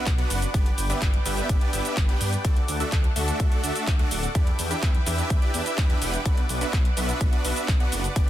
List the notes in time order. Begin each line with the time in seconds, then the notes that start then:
Already playing: B4 D5 F#5 D6, impact
0.06 B1, kick, clap, closed hi-hat, shaker
0.18 B3 D4 F#4 B4 F#5, closed hi-hat
0.30 F#1, open hi-hat, shaker
0.42 closed hi-hat, shaker
0.54 G1 B3 D4 G4 B4 D5 G5 D6, kick, closed hi-hat, shaker
0.66 closed hi-hat
0.78 G1, open hi-hat, shaker
0.90 B3 D4 G4 B4 E5, closed hi-hat, shaker
1.02 G1, kick, clap, closed hi-hat, shaker
1.14 closed hi-hat
1.25 G1 B3 D4 G4 B4 E5, clap, open hi-hat, shaker
1.37 closed hi-hat, shaker
1.49 G1, kick, closed hi-hat, shaker
1.61 B3 D4 G4 B4 D5, closed hi-hat
1.73 G1 B3 D4 G4 B4 E5, open hi-hat, shaker
1.85 closed hi-hat, shaker
1.97 G1, kick, clap, closed hi-hat, shaker
2.09 B3 D4 G4 B4 G5, closed hi-hat
2.21 G2, open hi-hat, shaker
2.33 closed hi-hat, shaker
2.44 D2 A3 D4 F#4 A4 D5 F#5 D6, kick, closed hi-hat, shaker
2.56 closed hi-hat
2.68 D2, open hi-hat, shaker
2.80 A3 D4 F#4 A4 E5, closed hi-hat, shaker
2.92 D2, kick, clap, closed hi-hat, shaker
3.04 closed hi-hat
3.16 D2 A3 D4 F#4 A4 E5, open hi-hat, shaker
3.28 closed hi-hat, shaker
3.40 D2, kick, closed hi-hat, shaker
3.52 A3 D4 F#4 A4 D5, closed hi-hat
3.64 D2 A3 D4 F#4 A4 E5, open hi-hat, shaker
3.76 closed hi-hat, shaker
3.87 D2, kick, clap, closed hi-hat, shaker
3.99 A3 D4 F#4 A4 F#5, closed hi-hat
4.11 D1, open hi-hat, shaker
4.23 closed hi-hat, shaker
4.35 E2 D4 E4 G4 B4 D5 E5 G5, kick, closed hi-hat, shaker
4.47 closed hi-hat
4.59 E2, open hi-hat, shaker
4.71 D4 E4 G4 B4 E5, closed hi-hat, shaker
4.83 E2, kick, clap, closed hi-hat, shaker
4.95 closed hi-hat
5.06 E2 D4 E4 G4 B4 E5, clap, open hi-hat, shaker
5.18 closed hi-hat, shaker
5.30 E2, kick, closed hi-hat, shaker
5.42 D4 E4 G4 B4 D5, closed hi-hat
5.54 E2 D4 E4 G4 B4 E5, open hi-hat, shaker
5.66 closed hi-hat, shaker
5.78 E2, kick, clap, closed hi-hat, shaker
5.90 D4 E4 G4 B4 E5, closed hi-hat
6.02 E1 D4 E4 G4 B4 F#5, open hi-hat, shaker
6.14 closed hi-hat, shaker
6.25 B1 B3 D4 F#4 B4 D5 F#5 D6, kick, closed hi-hat, shaker
6.37 closed hi-hat
6.49 B1, open hi-hat, shaker
6.61 B3 D4 F#4 B4 E5, closed hi-hat, shaker
6.73 B1, kick, clap, closed hi-hat, shaker
6.85 closed hi-hat
6.97 B1 B3 D4 F#4 B4 E5, open hi-hat, shaker
7.09 closed hi-hat, shaker
7.21 B1, kick, closed hi-hat, shaker
7.33 B3 D4 F#4 B4 D5, closed hi-hat
7.44 B1 B3 D4 F#4 B4 E5, open hi-hat, shaker
7.56 closed hi-hat, shaker
7.68 B1, kick, clap, closed hi-hat, shaker
7.80 B3 D4 F#4 B4 F#5, closed hi-hat
7.92 F#1, open hi-hat, shaker
8.04 closed hi-hat, shaker
8.16 G1 B3 D4 G4 B4 D5 G5, kick, closed hi-hat, shaker